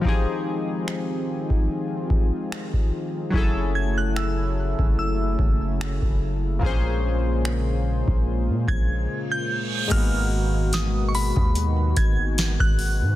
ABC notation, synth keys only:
X:1
M:4/4
L:1/8
Q:"Swing 16ths" 1/4=73
K:Ab
V:1 name="Synth keys"
[F,CEGA]8 | [_G,D_FA=A]8 | [B,,B,CDAc]8 | [A,,A,B,_C_G]8 |]